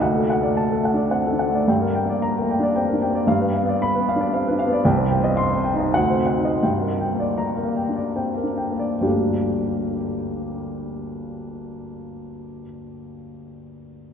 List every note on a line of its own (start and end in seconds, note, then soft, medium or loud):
0.01 1.64 D2 medium
0.01 0.23 F#5 soft
0.16 0.37 A4 soft
0.30 0.51 F#5 soft
0.40 0.68 A3 soft
0.40 0.65 D5 soft
0.57 0.79 A5 medium
0.71 0.93 A4 soft
0.76 1.05 A3 soft
0.85 1.06 F#5 soft
0.94 1.23 D4 soft
0.94 1.19 D5 soft
1.10 1.29 C4 soft
1.10 1.33 F#5 soft
1.27 1.48 A4 soft
1.32 1.61 D4 soft
1.39 1.62 F#5 soft
1.50 1.68 A3 soft
1.55 1.68 D5 soft
1.68 3.25 G2 medium
1.68 1.90 G5 soft
1.82 2.03 A#4 soft
1.95 2.17 G5 soft
2.05 2.34 A#3 soft
2.10 2.31 D5 soft
2.22 2.44 A#5 medium
2.38 2.59 A#4 soft
2.42 2.70 A#3 soft
2.51 2.71 G5 soft
2.59 2.87 D4 soft
2.59 2.84 D5 soft
2.76 2.94 C4 soft
2.76 2.97 G5 soft
2.88 3.10 A#4 soft
2.93 3.22 D4 soft
3.02 3.23 G5 soft
3.10 3.28 A#3 soft
3.15 3.29 D5 soft
3.27 4.80 G2 medium
3.27 3.49 F5 medium
3.41 3.63 B4 soft
3.54 3.76 F5 soft
3.63 3.92 B3 soft
3.69 3.90 D5 soft
3.82 4.03 B5 medium
3.95 4.16 B4 soft
4.00 4.28 B3 soft
4.09 4.29 F5 medium
4.16 4.44 D4 soft
4.21 4.41 D5 soft
4.33 4.51 C4 soft
4.33 4.54 F5 soft
4.47 4.78 D4 soft
4.47 4.67 B4 soft
4.59 4.79 F5 soft
4.67 4.84 B3 soft
4.73 4.85 D5 medium
4.85 5.91 C2 medium
4.85 5.05 G5 medium
4.97 5.18 C5 soft
5.10 5.31 G5 medium
5.20 5.48 C4 soft
5.24 5.45 D#5 medium
5.37 5.59 C6 medium
5.51 5.86 C4 soft
5.51 5.74 C5 soft
5.64 5.88 G5 medium
5.74 5.94 D#4 soft
5.79 5.95 D#5 soft
5.94 6.60 D2 medium
5.94 6.20 F#5 medium
6.10 6.37 C5 soft
6.16 6.53 C4 soft
6.27 6.55 F#5 soft
6.38 6.60 D#4 soft
6.45 6.63 D#5 soft
6.63 8.99 G2 soft
6.63 6.92 G5 soft
6.81 7.11 A#4 soft
7.00 7.30 G5 soft
7.14 7.53 A#3 soft
7.20 7.49 D5 soft
7.38 7.68 A#5 medium
7.56 7.88 A#4 soft
7.63 8.05 A#3 soft
7.77 8.08 G5 soft
7.89 8.33 D4 soft
7.96 8.29 D5 soft
8.16 8.44 C4 soft
8.16 8.50 G5 soft
8.37 8.72 A#4 soft
8.44 8.91 D4 soft
8.58 8.93 G5 soft
8.72 9.00 A#3 soft
8.79 9.02 D5 soft
9.01 12.62 G1 soft
9.01 12.62 D2 soft
9.01 12.63 G3 soft
9.01 12.62 A#3 soft
9.01 12.63 D4 soft
9.01 12.63 G4 soft